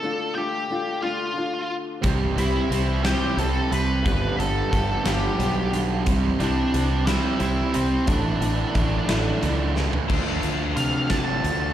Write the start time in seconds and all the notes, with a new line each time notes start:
Already playing: A4 A5
0.02 D3 A3 D4 F4
0.35 D4 F4 G4 G5
0.39 A3
0.69 D3 A3 D4 F4
1.02 D3 A3 D4 F4 F5
1.35 D3 A3 D4 F4
2.02 C2 C3 E3 G3 C4 E4 G4, kick, closed hi-hat
2.36 C2 C3 G3 C4 E4 G4 E5, closed hi-hat
2.41 G3
2.69 C2 C3 E3 G3 C4 E4, closed hi-hat
2.73 G4
3.04 C3 E3 G3 C4 E4 G4 G5, snare, closed hi-hat
3.37 C2 C3 E3 G3 C4 E4 A4 A5, closed hi-hat
3.42 G4
3.71 C2 C3 G3 C4 E4 B4 B5, closed hi-hat
4.03 G1 G2 D3 F3 G3 B3 D4, kick, closed hi-hat
4.07 G4
4.37 G1 G2 D3 G3 B3 D4 G4 A4 A5, closed hi-hat
4.42 F3
4.70 G1 G2 D3 F3 G3 B3 D4, kick, closed hi-hat
4.75 G4
5.04 G1 G2 D3 G3 B3 D4 G4, snare, closed hi-hat
5.08 G2 D3 F3 G5
5.36 B1 G2 D3 F3 G3 B3 D4, closed hi-hat
5.42 G4
5.72 G2 D3 G3 B3 D4, closed hi-hat
6.05 C2 C3 E3 G3 C4 E4, kick, closed hi-hat
6.39 C2 C3 G3 C4 D4 E4 D5, closed hi-hat
6.73 C2 C3 E3 G3 C4 E4, closed hi-hat
7.06 C3 E3 G3 C4 E4 E5, snare, closed hi-hat
7.39 C2 C3 E3 G3 C4 E4 E5, closed hi-hat
7.73 C2 C3 G3 C4 E4 C5, closed hi-hat
8.06 A1 A2 D3 E3 A3 D4 E4 D5, kick, closed hi-hat
8.41 A1 A2 D3 E3 A3 D4 E4, closed hi-hat
8.73 A1 A2 D3 E3 A3 E4, kick, closed hi-hat
8.77 D4
9.07 A1 A2 D3 E3 A3 D4 E4, snare, closed hi-hat
9.41 C#2 A2 D3 E3 A3 E4, closed hi-hat
9.45 D4
9.75 A2 D3 E3 A3 E4, snare
9.93 floor tom
10.09 D2 D3 F3 A3 D4, kick, crash
10.43 D2 F4, closed hi-hat
10.76 C3 A3 F5, closed hi-hat
11.10 D3 F3 A3 D4 A5, kick, snare, closed hi-hat
11.44 D2 F4, closed hi-hat